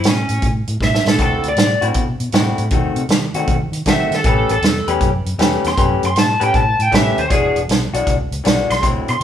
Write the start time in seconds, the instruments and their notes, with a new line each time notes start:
0.04 fingered electric bass A2, snare, closed hi-hat
0.09 lead electric guitar C#4
0.29 fingered electric bass A2, closed hi-hat
0.42 fingered electric bass A2, kick, closed hi-hat
0.68 fingered electric bass A2, closed hi-hat
0.80 fingered electric bass A2, lead electric guitar E5, kick, snare
0.95 snare
1.05 fingered electric bass A2, lead electric guitar A4, snare
1.18 fingered electric bass D2, clean electric guitar D3 C4 E4 F#4, kick, closed hi-hat
1.23 lead electric guitar A4
1.44 fingered electric bass D2, closed hi-hat
1.48 lead electric guitar D5
1.56 fingered electric bass A2, snare, closed hi-hat
1.81 fingered electric bass A2, clean electric guitar D3 C4 E4 F#4, closed hi-hat
1.94 fingered electric bass B2, kick, closed hi-hat
2.20 fingered electric bass B2, closed hi-hat
2.32 fingered electric bass A2, clean electric guitar D3 C4 E4 F#4, snare, closed hi-hat
2.58 fingered electric bass A2, closed hi-hat
2.71 fingered electric bass D#2, clean electric guitar D#3 A3 C4 F#4, kick, closed hi-hat
2.96 fingered electric bass C3, closed hi-hat
3.09 fingered electric bass D#3, snare, closed hi-hat
3.34 fingered electric bass D#3, clean electric guitar D#3 A3 C4 F#4, closed hi-hat
3.47 fingered electric bass D#3, kick, closed hi-hat
3.72 fingered electric bass D#3, closed hi-hat
3.86 fingered electric bass D#3, clean electric guitar D#3 A3 C4 F#4, kick, snare, closed hi-hat
3.90 lead electric guitar E5
4.11 fingered electric bass D#3, lead electric guitar A4, snare, closed hi-hat
4.24 fingered electric bass A1, clean electric guitar A3 C#4 G4 B4, lead electric guitar A4, kick, closed hi-hat
4.49 fingered electric bass A1, lead electric guitar A4, closed hi-hat
4.62 fingered electric bass E2, snare, closed hi-hat
4.87 fingered electric bass E2, clean electric guitar A3 C#4 G4 B4, closed hi-hat
5.01 fingered electric bass F#2, kick, closed hi-hat
5.25 fingered electric bass F#2, closed hi-hat
5.38 fingered electric bass E2, clean electric guitar A3 C#4 G4 B4, snare, closed hi-hat
5.64 fingered electric bass E2, lead electric guitar C6, snare, closed hi-hat
5.77 fingered electric bass F#2, clean electric guitar A3 C#4 G4 B4, kick, closed hi-hat
6.03 fingered electric bass F#2, lead electric guitar C6, closed hi-hat
6.16 fingered electric bass A2, lead electric guitar A5, snare, closed hi-hat
6.40 fingered electric bass A2, clean electric guitar A3 C#4 G4 B4, lead electric guitar G5, closed hi-hat
6.54 fingered electric bass A2, lead electric guitar A5, kick, closed hi-hat
6.79 fingered electric bass A2, lead electric guitar G5, closed hi-hat
6.91 fingered electric bass A2, clean electric guitar A3 C#4 G4 B4, lead electric guitar E5, kick, snare, closed hi-hat
7.18 fingered electric bass D#2, lead electric guitar C5, closed hi-hat
7.30 fingered electric bass E1, clean electric guitar E3 G#3 D4 F#4, lead electric guitar G#4, kick, closed hi-hat
7.56 fingered electric bass E1, closed hi-hat
7.68 fingered electric bass B1, snare, closed hi-hat
7.93 fingered electric bass B1, clean electric guitar E3 G#3 D4 F#4, closed hi-hat
8.07 fingered electric bass C#2, kick, closed hi-hat
8.31 fingered electric bass C#2, closed hi-hat
8.44 fingered electric bass B1, clean electric guitar E3 G#3 D4 F#4, snare, closed hi-hat
8.70 fingered electric bass B1, lead electric guitar C6, snare, closed hi-hat
8.82 fingered electric bass D2, clean electric guitar D3 F#3 C4 E4, kick, closed hi-hat
9.08 fingered electric bass B2, lead electric guitar C6, closed hi-hat